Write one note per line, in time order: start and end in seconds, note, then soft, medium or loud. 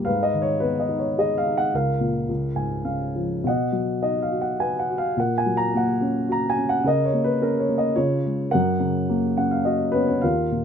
0.05 1.69 G#2 medium
0.05 0.59 B4 medium
0.05 0.24 F5 medium
0.23 0.41 D#5 medium
0.34 1.42 D#3 soft
0.42 0.60 C#5 medium
0.60 1.70 B3 soft
0.60 0.80 B4 medium
0.80 0.99 D#5 medium
0.89 1.45 D#4 soft
0.99 1.16 C#5 medium
1.18 1.72 G#4 soft
1.18 1.37 D#5 medium
1.38 1.56 F5 medium
1.47 1.73 D#4 soft
1.58 1.73 F#5 medium
1.74 2.27 C#2 soft
1.74 2.84 A#4 medium
1.74 2.83 F5 medium
2.00 2.28 A#2 soft
2.29 3.42 C#2 soft
2.56 3.42 G#2 soft
2.56 2.84 G#5 soft
2.84 3.42 C#3 soft
2.84 3.40 F5 soft
3.16 3.44 F3 soft
3.44 5.11 B2 medium
3.44 3.99 F#5 medium
3.49 4.01 D#5 medium
3.72 4.83 F#3 soft
4.02 5.12 D#4 soft
4.02 4.20 D#5 medium
4.22 4.39 F5 medium
4.32 4.88 F#4 soft
4.42 4.60 F#5 medium
4.60 5.15 B4 soft
4.60 4.79 G#5 medium
4.79 4.98 F#5 medium
4.90 5.16 F#4 soft
4.98 5.17 F5 medium
5.17 6.81 A#2 soft
5.17 5.98 A#4 soft
5.17 5.36 F#5 medium
5.38 5.56 G#5 medium
5.46 6.54 F#3 soft
5.57 5.75 A#5 medium
5.74 6.82 A#3 soft
5.74 6.27 F#5 medium
6.01 6.56 C#4 soft
6.28 6.83 F#4 soft
6.28 6.48 A#5 medium
6.50 6.68 G#5 medium
6.57 6.84 C#4 soft
6.69 6.85 F#5 medium
6.84 7.92 C#3 medium
6.84 7.41 A#4 medium
6.84 7.03 D#5 medium
7.05 7.23 C#5 medium
7.13 7.67 A#3 soft
7.24 7.42 B4 medium
7.41 7.95 C#4 soft
7.41 7.60 A#4 medium
7.60 7.76 C#5 medium
7.69 7.96 A#3 soft
7.78 7.97 D#5 medium
7.95 8.51 C#3 medium
7.95 8.48 F4 soft
7.95 8.48 C#5 medium
8.25 8.52 G#3 soft
8.51 10.21 F#2 medium
8.51 9.61 A#4 medium
8.51 9.36 F#5 medium
8.80 9.92 C#3 soft
9.09 10.22 A#3 medium
9.37 9.93 C#4 soft
9.37 9.50 F#5 medium
9.51 9.65 F5 medium
9.65 10.22 F#4 soft
9.65 9.93 D#5 medium
9.92 10.08 B3 medium
9.92 10.08 C#4 medium
9.92 10.08 B4 medium
9.92 10.05 C#5 medium
10.07 10.23 C#4 medium
10.07 10.23 C#5 medium
10.22 10.64 D#2 soft
10.22 10.64 F4 medium
10.22 10.64 A#4 soft
10.22 10.63 F5 medium
10.52 10.64 A#2 soft